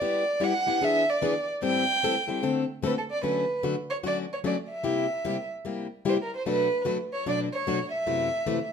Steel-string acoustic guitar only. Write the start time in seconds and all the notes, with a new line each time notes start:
0.01 G3 B3 E4 G4
0.40 G3 B3 E4 G4
0.67 B3 E4 G4
0.81 E3 B3 D4 G#4
1.22 E3 B3 D4 G#4
1.62 A2 E3 G3 C4 E4 A4
2.03 A2 E3 G3 C4 E4 A4
2.28 G3 C4 E4 A4
2.43 D3 A3 C4 F#4 A4
2.82 D3 A3 C4 F#4 A4
3.23 D3 F#3 A3 C#4 F#4
3.63 D3 F#3 A3 C#4 F#4
4.03 D3 F#3 A3 C#4 F#4
4.44 D3 F#3 A3 C#4 F#4
4.84 C3 G3 A#3 E4 G4
5.25 C3 G3 A#3 E4 G4
5.65 C3 G3 A#3 E4 G4
6.05 C3 G3 A#3 E4 G4
6.46 B2 F#3 A3 D4 F#4
6.85 B2 F#3 A3 D4 F#4
7.26 B2 F#3 A3 D4 F#4
7.67 B2 F#3 A3 D4 F#4
8.07 F#2 C3 E3 A3 E4 F#4
8.46 F#2 C3 E3 A3 E4 F#4